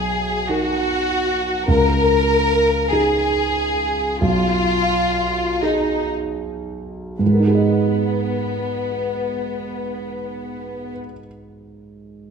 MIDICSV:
0, 0, Header, 1, 3, 480
1, 0, Start_track
1, 0, Tempo, 794702
1, 1014, Time_signature, 6, 3, 24, 8
1, 1014, Tempo, 831025
1, 1974, Tempo, 875912
1, 2454, Tempo, 927357
1, 2934, Tempo, 991736
1, 3414, Tempo, 1069519
1, 6183, End_track
2, 0, Start_track
2, 0, Title_t, "Violin section"
2, 0, Program_c, 0, 48
2, 0, Note_on_c, 0, 68, 55
2, 274, Note_off_c, 0, 68, 0
2, 288, Note_on_c, 0, 66, 63
2, 1012, Note_off_c, 0, 66, 0
2, 1014, Note_on_c, 0, 70, 74
2, 1715, Note_off_c, 0, 70, 0
2, 1731, Note_on_c, 0, 68, 57
2, 2454, Note_off_c, 0, 68, 0
2, 2456, Note_on_c, 0, 65, 76
2, 3157, Note_off_c, 0, 65, 0
2, 3168, Note_on_c, 0, 63, 50
2, 3413, Note_off_c, 0, 63, 0
2, 3896, Note_on_c, 0, 59, 35
2, 5567, Note_off_c, 0, 59, 0
2, 6183, End_track
3, 0, Start_track
3, 0, Title_t, "Grand piano"
3, 0, Program_c, 1, 0
3, 0, Control_c, 1, 64, 127
3, 0, Note_on_c, 1, 35, 40
3, 297, Note_on_c, 1, 63, 31
3, 299, Note_on_c, 1, 70, 30
3, 991, Note_off_c, 1, 35, 0
3, 993, Note_off_c, 1, 63, 0
3, 993, Note_off_c, 1, 70, 0
3, 1013, Note_on_c, 1, 37, 46
3, 1025, Control_c, 1, 64, 0
3, 1110, Control_c, 1, 64, 127
3, 1734, Note_on_c, 1, 63, 35
3, 1735, Note_on_c, 1, 68, 36
3, 2431, Note_off_c, 1, 37, 0
3, 2434, Note_off_c, 1, 63, 0
3, 2434, Note_off_c, 1, 68, 0
3, 2451, Note_on_c, 1, 35, 49
3, 2465, Control_c, 1, 64, 0
3, 2571, Control_c, 1, 64, 127
3, 3167, Note_on_c, 1, 68, 34
3, 3168, Note_on_c, 1, 63, 31
3, 3873, Note_off_c, 1, 35, 0
3, 3873, Note_off_c, 1, 63, 0
3, 3873, Note_off_c, 1, 68, 0
3, 3887, Note_on_c, 1, 44, 32
3, 3904, Control_c, 1, 64, 0
3, 3919, Note_on_c, 1, 56, 30
3, 3950, Note_on_c, 1, 70, 30
3, 3980, Note_on_c, 1, 63, 30
3, 3983, Control_c, 1, 64, 127
3, 4015, Note_on_c, 1, 68, 27
3, 4048, Note_on_c, 1, 75, 30
3, 5558, Note_off_c, 1, 44, 0
3, 5590, Note_off_c, 1, 56, 0
3, 5621, Note_off_c, 1, 70, 0
3, 5651, Note_off_c, 1, 63, 0
3, 5686, Note_off_c, 1, 68, 0
3, 5719, Note_off_c, 1, 75, 0
3, 6183, End_track
0, 0, End_of_file